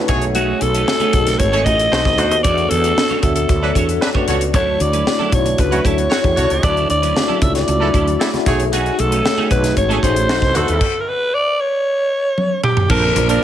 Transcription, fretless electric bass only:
0.09 B1
0.61 B1
1.13 B1
1.40 G#1
1.66 A1
1.92 B1
2.06 C2
2.18 D2
2.31 D#2
2.45 E2
2.71 E2
3.23 D2
3.49 D2
3.75 E2
4.28 C#2
4.54 D2
4.81 D2
5.32 B1
5.59 C#2
5.85 D2
6.24 E2
6.37 C2
6.51 C#2
6.63 D2
6.90 D2
7.42 C#2
7.68 C#2
7.94 D2
8.47 B1
8.99 B1
9.51 B1
9.77 G#1
10.03 A1
10.29 B1
10.42 C2
10.56 D2
10.69 D#2
12.90 A#1
13.16 A#1

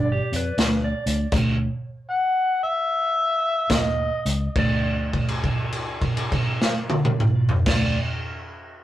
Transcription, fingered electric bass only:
Already playing: G1
0.32 F2
0.58 D2
1.06 D2
1.32 D2
3.70 D#2
4.25 C#2
4.56 D2
7.66 D2

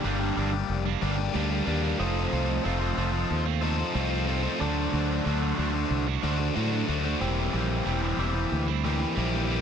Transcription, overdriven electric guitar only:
0.03 G3 A#3 D4 G4
0.20 A#3 D4 G4
0.36 G3 A#3 D4 G4
0.53 A#3 D4 G4
0.85 muted overdriven electric guitar stroke
1.01 G3 A#3 D4 G4
1.34 G3 A#3 D4 G4
1.50 A#3 D4 G4
1.66 G3 A#3 D4 G4
1.82 A#3 D4 G4
1.99 F3 C4 D#4 A4 C5
2.32 C4 D#4 A4 C5
2.64 F3 C4 D#4 A4 C5
2.80 D#4 A4 C5
2.96 C4 D#4 A4 C5
3.12 D#4 A4 C5
3.45 muted overdriven electric guitar stroke
3.61 C4 D#4 A4 C5
3.94 F3 C4 D#4 A4 C5
4.10 D#4 A4 C5
4.27 C4 D#4 A4 C5
4.43 D#4 A4 C5
4.60 D3 F#3 A3 D4 F#4 C5
4.92 A3 D4 F#4 C5
5.25 D3 F#3 A3 D4 F#4 C5
5.41 A3 D4 F#4 C5
5.57 A3 D4 F#4 C5
5.73 A3 D4 F#4 C5
6.07 muted overdriven electric guitar stroke
6.23 A3 D4 F#4 C5
6.55 D3 F#3 A3 D4 F#4 C5
6.71 A3 D4 F#4 C5
6.87 A3 D4 F#4 C5
7.04 A3 D4 F#4 C5
7.20 E3 A#3 C4 G4
7.52 E3 A#3 C4 G4
7.86 E3 A#3 C4 G4
8.02 A#3 C4 G4
8.18 E3 A#3 C4 G4
8.35 A#3 C4 G4
8.68 muted overdriven electric guitar stroke
8.84 E3 A#3 C4 G4
9.17 E3 A#3 C4 G4
9.33 A#3 C4 G4
9.49 E3 A#3 C4 G4

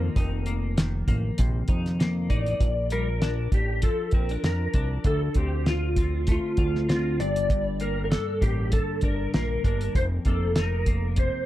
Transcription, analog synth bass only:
0.16 F1
1.08 A1
1.39 A#1
1.69 F2
2.30 A1
2.61 A#1
3.52 A1
4.13 A#1
4.43 F2
4.74 C2
5.05 D2
5.36 D2
6.58 D2
7.20 G1
8.42 A1
9.03 G1
9.35 A#1
9.65 G1
9.95 F1
10.25 F1

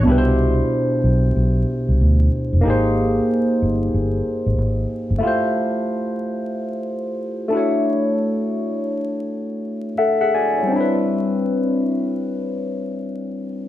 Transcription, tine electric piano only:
0.03 B2 D4
0.07 E4 G4
0.12 B4
0.18 C5
2.61 A#3 D#4
2.65 G4 G#4
2.70 C5
5.18 A3 E4
5.23 F4 G4
5.27 C5
7.48 A3 D4
7.53 E4 F#4
7.57 C#5
9.98 A4 E5 F#5
10.21 G#4 E5 F#5
10.35 F#4 D5 G#5
10.58 E4 C#5
10.63 G3
10.67 C4
10.72 D4
10.76 E4
10.80 B4

